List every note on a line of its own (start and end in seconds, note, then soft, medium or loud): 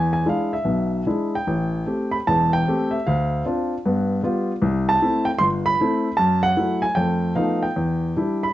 0.00 0.22 E2 medium
0.00 0.11 G#5 medium
0.13 0.26 G#5 medium
0.26 0.53 G#3 soft
0.26 0.53 D4 soft
0.26 0.53 E4 soft
0.26 0.52 F5 medium
0.53 1.04 E5 medium
0.65 1.01 B1 soft
0.65 1.01 B2 soft
1.06 1.35 G#3 soft
1.06 1.35 D4 soft
1.06 1.35 E4 medium
1.35 2.17 G5 medium
1.47 1.82 A1 medium
1.86 2.15 A3 soft
1.86 2.15 C4 soft
1.86 2.15 G4 soft
2.11 2.16 B5 medium
2.27 2.62 E1 medium
2.27 2.62 E2 medium
2.27 2.52 A5 medium
2.53 2.91 G5 medium
2.67 2.95 A3 medium
2.67 2.95 C4 soft
2.67 2.95 G4 medium
2.91 3.05 E5 medium
3.07 3.42 D2 medium
3.07 3.44 F5 medium
3.45 3.73 C4 soft
3.45 3.73 D4 soft
3.45 3.73 F4 medium
3.86 4.19 G2 medium
3.86 4.20 B3 medium
4.23 4.50 G3 medium
4.23 4.51 B3 soft
4.23 4.51 F4 medium
4.62 4.96 C2 medium
4.89 5.25 A5 medium
5.02 5.29 A3 medium
5.02 5.29 C4 soft
5.02 5.29 E4 medium
5.25 5.30 G5 medium
5.39 5.74 G1 medium
5.39 5.44 C6 loud
5.66 6.15 B5 loud
5.81 6.07 A3 medium
5.81 6.07 C4 soft
5.81 6.07 E4 medium
6.17 6.53 F#2 medium
6.17 6.41 A5 medium
6.43 6.80 F#5 loud
6.57 6.84 F#3 soft
6.57 6.85 A3 soft
6.57 6.84 E4 medium
6.82 6.96 G#5 medium
6.95 7.32 F2 medium
6.95 7.32 A3 medium
6.95 7.34 G5 medium
7.36 7.64 F3 soft
7.36 7.65 A3 soft
7.36 7.65 B3 soft
7.36 7.65 D#4 medium
7.36 7.64 F5 medium
7.63 8.40 G5 medium
7.76 8.12 E2 medium
8.16 8.45 G3 soft
8.16 8.45 D4 soft
8.16 8.45 E4 medium
8.43 8.53 B5 medium